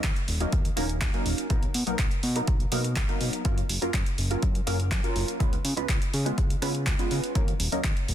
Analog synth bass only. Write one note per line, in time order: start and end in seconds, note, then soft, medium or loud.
0.04 0.13 D#2 medium
0.28 0.46 D#1 medium
0.53 0.71 D#2 medium
0.77 1.03 D#1 medium
1.01 1.11 D#2 loud
1.26 1.35 D#1 medium
1.50 1.68 B1 medium
1.75 1.84 B2 medium
1.87 1.96 B1 soft
1.99 2.08 B1 medium
2.23 2.42 B2 medium
2.48 2.66 B1 medium
2.72 2.98 B2 medium
2.96 3.06 B1 loud
3.21 3.30 B2 medium
3.45 3.63 F#2 medium
3.69 3.79 F#1 medium
3.82 3.92 F#2 soft
3.94 4.03 F#2 medium
4.18 4.37 F#1 medium
4.43 4.61 F#2 medium
4.67 4.93 F#1 medium
4.92 5.01 F#2 loud
5.16 5.25 F#1 medium
5.40 5.59 C#2 medium
5.65 5.74 C#3 medium
5.77 5.87 C#2 soft
5.89 5.98 C#2 medium
6.14 6.32 C#3 medium
6.38 6.56 C#2 medium
6.62 6.88 C#3 medium
6.87 6.96 C#2 loud
7.11 7.20 C#3 medium
7.35 7.54 D#2 loud
7.60 7.69 D#1 medium
7.72 7.82 D#2 soft
7.84 7.94 D#2 medium
8.09 8.14 D#1 medium